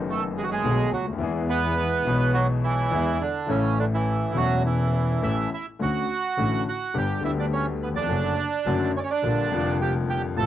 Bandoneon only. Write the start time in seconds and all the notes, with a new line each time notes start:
0.10 A3 A4
0.37 G#3 G#4
0.43 F#4
0.51 G#3 G#4
0.93 F#3 F#4
1.49 B3 B4
2.34 F#3 F#4
2.64 E3 E4
3.21 D3 D4
3.49 C#3 C#4
3.79 D3 D4
3.94 E3 E4
4.36 F#3 F#4
4.65 E3 E4
5.23 E4 E5
5.54 E4 E5
5.82 F#4 F#5
6.68 F#4 F#5
6.97 G4 G5
7.25 E4 E5
7.40 D4 D5
7.53 C#4 C#5
7.83 B3 B4
7.96 D4 D5
8.96 C#4 C#5 D5
9.03 C#4 C#5
9.10 D4 D5
9.81 G4 G5
10.09 G4 G5
10.37 A4 A5